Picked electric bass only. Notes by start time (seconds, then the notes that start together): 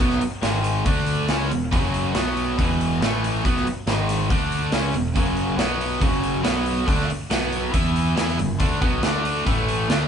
0.00 B1
0.21 muted picked electric bass stroke
0.43 G#1
0.85 D2
1.29 C#2
1.51 E1
1.73 F#1
2.15 B1
2.59 E1
3.00 A1
3.45 B1
3.65 muted picked electric bass stroke
3.86 G#1
4.30 D2
4.73 C#2
4.92 E1
5.16 F#1
5.57 B1
6.01 F#1
6.44 B1
6.88 D2
7.10 muted picked electric bass stroke
7.31 B1
7.74 E2
8.17 E2
8.37 F#1
8.60 D2
8.82 B1
9.01 D2
9.47 A1
9.88 D2